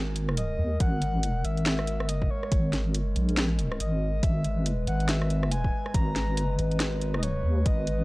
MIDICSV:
0, 0, Header, 1, 5, 480
1, 0, Start_track
1, 0, Key_signature, 5, "minor"
1, 0, Tempo, 428571
1, 898, Time_signature, 4, 2, 24, 8
1, 9007, End_track
2, 0, Start_track
2, 0, Title_t, "Soft synth lead"
2, 0, Program_c, 0, 80
2, 417, Note_on_c, 0, 75, 101
2, 864, Note_off_c, 0, 75, 0
2, 898, Note_on_c, 0, 78, 125
2, 1619, Note_on_c, 0, 76, 115
2, 1636, Note_off_c, 0, 78, 0
2, 2339, Note_on_c, 0, 75, 97
2, 2356, Note_off_c, 0, 76, 0
2, 2580, Note_on_c, 0, 73, 89
2, 2597, Note_off_c, 0, 75, 0
2, 3059, Note_off_c, 0, 73, 0
2, 4258, Note_on_c, 0, 75, 88
2, 4737, Note_on_c, 0, 76, 103
2, 4754, Note_off_c, 0, 75, 0
2, 5217, Note_off_c, 0, 76, 0
2, 5458, Note_on_c, 0, 78, 99
2, 5696, Note_on_c, 0, 76, 102
2, 5713, Note_off_c, 0, 78, 0
2, 6173, Note_on_c, 0, 80, 105
2, 6190, Note_off_c, 0, 76, 0
2, 6647, Note_off_c, 0, 80, 0
2, 6654, Note_on_c, 0, 82, 113
2, 7331, Note_off_c, 0, 82, 0
2, 8037, Note_on_c, 0, 75, 63
2, 8101, Note_on_c, 0, 73, 87
2, 8118, Note_off_c, 0, 75, 0
2, 8573, Note_off_c, 0, 73, 0
2, 8579, Note_on_c, 0, 75, 103
2, 9007, Note_off_c, 0, 75, 0
2, 9007, End_track
3, 0, Start_track
3, 0, Title_t, "Analog synth pad"
3, 0, Program_c, 1, 89
3, 0, Note_on_c, 1, 56, 83
3, 0, Note_on_c, 1, 70, 94
3, 4722, Note_off_c, 1, 70, 0
3, 4740, Note_on_c, 1, 71, 91
3, 9007, Note_off_c, 1, 56, 0
3, 9007, Note_off_c, 1, 71, 0
3, 9007, End_track
4, 0, Start_track
4, 0, Title_t, "Wobble bass"
4, 0, Program_c, 2, 39
4, 0, Note_on_c, 2, 32, 95
4, 642, Note_off_c, 2, 32, 0
4, 658, Note_on_c, 2, 39, 97
4, 883, Note_off_c, 2, 39, 0
4, 899, Note_on_c, 2, 32, 98
4, 1603, Note_off_c, 2, 32, 0
4, 1619, Note_on_c, 2, 32, 94
4, 2291, Note_off_c, 2, 32, 0
4, 2291, Note_on_c, 2, 31, 94
4, 2563, Note_off_c, 2, 31, 0
4, 2819, Note_on_c, 2, 32, 97
4, 3323, Note_off_c, 2, 32, 0
4, 3323, Note_on_c, 2, 31, 97
4, 3523, Note_off_c, 2, 31, 0
4, 3539, Note_on_c, 2, 34, 96
4, 4243, Note_off_c, 2, 34, 0
4, 4259, Note_on_c, 2, 32, 95
4, 4723, Note_off_c, 2, 32, 0
4, 4737, Note_on_c, 2, 32, 95
4, 5442, Note_off_c, 2, 32, 0
4, 5457, Note_on_c, 2, 32, 93
4, 6402, Note_off_c, 2, 32, 0
4, 6657, Note_on_c, 2, 32, 95
4, 7161, Note_off_c, 2, 32, 0
4, 7161, Note_on_c, 2, 31, 95
4, 7362, Note_off_c, 2, 31, 0
4, 7379, Note_on_c, 2, 32, 95
4, 8323, Note_off_c, 2, 32, 0
4, 8336, Note_on_c, 2, 39, 100
4, 8562, Note_off_c, 2, 39, 0
4, 8577, Note_on_c, 2, 32, 96
4, 9007, Note_off_c, 2, 32, 0
4, 9007, End_track
5, 0, Start_track
5, 0, Title_t, "Drums"
5, 177, Note_on_c, 9, 42, 56
5, 289, Note_off_c, 9, 42, 0
5, 321, Note_on_c, 9, 37, 83
5, 417, Note_on_c, 9, 42, 87
5, 433, Note_off_c, 9, 37, 0
5, 529, Note_off_c, 9, 42, 0
5, 897, Note_on_c, 9, 42, 83
5, 899, Note_on_c, 9, 36, 125
5, 1009, Note_off_c, 9, 42, 0
5, 1011, Note_off_c, 9, 36, 0
5, 1138, Note_on_c, 9, 42, 54
5, 1250, Note_off_c, 9, 42, 0
5, 1378, Note_on_c, 9, 42, 81
5, 1490, Note_off_c, 9, 42, 0
5, 1619, Note_on_c, 9, 42, 54
5, 1731, Note_off_c, 9, 42, 0
5, 1763, Note_on_c, 9, 42, 38
5, 1859, Note_off_c, 9, 42, 0
5, 1859, Note_on_c, 9, 38, 127
5, 1859, Note_on_c, 9, 42, 85
5, 1971, Note_off_c, 9, 38, 0
5, 1971, Note_off_c, 9, 42, 0
5, 2003, Note_on_c, 9, 37, 76
5, 2099, Note_on_c, 9, 42, 56
5, 2115, Note_off_c, 9, 37, 0
5, 2211, Note_off_c, 9, 42, 0
5, 2243, Note_on_c, 9, 37, 79
5, 2338, Note_on_c, 9, 42, 83
5, 2355, Note_off_c, 9, 37, 0
5, 2450, Note_off_c, 9, 42, 0
5, 2483, Note_on_c, 9, 36, 67
5, 2595, Note_off_c, 9, 36, 0
5, 2723, Note_on_c, 9, 37, 58
5, 2818, Note_on_c, 9, 42, 81
5, 2819, Note_on_c, 9, 36, 123
5, 2835, Note_off_c, 9, 37, 0
5, 2930, Note_off_c, 9, 42, 0
5, 2931, Note_off_c, 9, 36, 0
5, 3059, Note_on_c, 9, 38, 65
5, 3059, Note_on_c, 9, 42, 53
5, 3171, Note_off_c, 9, 38, 0
5, 3171, Note_off_c, 9, 42, 0
5, 3299, Note_on_c, 9, 42, 79
5, 3411, Note_off_c, 9, 42, 0
5, 3538, Note_on_c, 9, 42, 52
5, 3650, Note_off_c, 9, 42, 0
5, 3682, Note_on_c, 9, 42, 37
5, 3778, Note_off_c, 9, 42, 0
5, 3778, Note_on_c, 9, 38, 127
5, 3778, Note_on_c, 9, 42, 81
5, 3890, Note_off_c, 9, 38, 0
5, 3890, Note_off_c, 9, 42, 0
5, 4018, Note_on_c, 9, 42, 51
5, 4130, Note_off_c, 9, 42, 0
5, 4162, Note_on_c, 9, 37, 81
5, 4258, Note_on_c, 9, 42, 79
5, 4274, Note_off_c, 9, 37, 0
5, 4370, Note_off_c, 9, 42, 0
5, 4737, Note_on_c, 9, 36, 122
5, 4737, Note_on_c, 9, 42, 78
5, 4849, Note_off_c, 9, 36, 0
5, 4849, Note_off_c, 9, 42, 0
5, 4978, Note_on_c, 9, 42, 50
5, 5090, Note_off_c, 9, 42, 0
5, 5217, Note_on_c, 9, 42, 75
5, 5329, Note_off_c, 9, 42, 0
5, 5458, Note_on_c, 9, 42, 52
5, 5570, Note_off_c, 9, 42, 0
5, 5602, Note_on_c, 9, 42, 36
5, 5696, Note_off_c, 9, 42, 0
5, 5696, Note_on_c, 9, 38, 125
5, 5696, Note_on_c, 9, 42, 79
5, 5808, Note_off_c, 9, 38, 0
5, 5808, Note_off_c, 9, 42, 0
5, 5842, Note_on_c, 9, 37, 82
5, 5938, Note_on_c, 9, 42, 51
5, 5954, Note_off_c, 9, 37, 0
5, 6050, Note_off_c, 9, 42, 0
5, 6082, Note_on_c, 9, 37, 85
5, 6177, Note_on_c, 9, 42, 77
5, 6194, Note_off_c, 9, 37, 0
5, 6289, Note_off_c, 9, 42, 0
5, 6321, Note_on_c, 9, 36, 64
5, 6433, Note_off_c, 9, 36, 0
5, 6562, Note_on_c, 9, 37, 63
5, 6657, Note_on_c, 9, 36, 118
5, 6657, Note_on_c, 9, 42, 79
5, 6674, Note_off_c, 9, 37, 0
5, 6769, Note_off_c, 9, 36, 0
5, 6769, Note_off_c, 9, 42, 0
5, 6898, Note_on_c, 9, 38, 59
5, 6898, Note_on_c, 9, 42, 50
5, 7010, Note_off_c, 9, 38, 0
5, 7010, Note_off_c, 9, 42, 0
5, 7138, Note_on_c, 9, 42, 77
5, 7250, Note_off_c, 9, 42, 0
5, 7377, Note_on_c, 9, 42, 51
5, 7489, Note_off_c, 9, 42, 0
5, 7521, Note_on_c, 9, 42, 36
5, 7616, Note_off_c, 9, 42, 0
5, 7616, Note_on_c, 9, 38, 120
5, 7616, Note_on_c, 9, 42, 81
5, 7728, Note_off_c, 9, 38, 0
5, 7728, Note_off_c, 9, 42, 0
5, 7857, Note_on_c, 9, 42, 50
5, 7969, Note_off_c, 9, 42, 0
5, 8001, Note_on_c, 9, 37, 90
5, 8096, Note_on_c, 9, 42, 77
5, 8113, Note_off_c, 9, 37, 0
5, 8208, Note_off_c, 9, 42, 0
5, 8576, Note_on_c, 9, 42, 78
5, 8577, Note_on_c, 9, 36, 113
5, 8688, Note_off_c, 9, 42, 0
5, 8689, Note_off_c, 9, 36, 0
5, 8816, Note_on_c, 9, 42, 51
5, 8928, Note_off_c, 9, 42, 0
5, 9007, End_track
0, 0, End_of_file